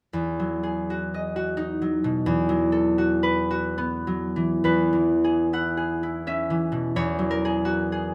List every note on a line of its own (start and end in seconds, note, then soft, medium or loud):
0.13 2.25 E2 soft
0.40 1.80 F#3 soft
0.63 4.53 G#4 soft
0.90 1.35 F#4 soft
1.14 2.31 D#5 soft
1.36 2.97 F#4 soft
1.57 2.29 D#4 soft
1.82 2.48 F#3 soft
2.04 2.30 B2 soft
2.26 4.63 E2 medium
2.49 4.06 F#3 soft
2.72 4.65 A4 soft
2.98 3.49 F#4 soft
3.23 4.63 B4 medium
3.51 4.67 F#4 soft
3.78 6.99 B3 soft
4.07 4.68 F#3 soft
4.36 4.67 E3 soft
4.64 6.95 E2 soft
4.64 6.99 B4 medium
4.93 6.49 E3 soft
5.24 5.76 G#4 soft
5.53 6.02 E4 soft
5.53 6.76 F#5 medium
5.77 7.44 G#4 soft
6.03 8.14 E4 soft
6.27 8.14 C#4 soft
6.27 8.14 E5 medium
6.50 6.99 E3 soft
6.72 6.98 B2 soft
6.96 8.14 E2 medium
6.96 8.14 C#5 medium
7.19 8.14 F#3 soft
7.31 8.14 A#4 medium
7.45 7.91 G#4 soft
7.65 8.14 F#4 soft
7.92 8.14 G#4 soft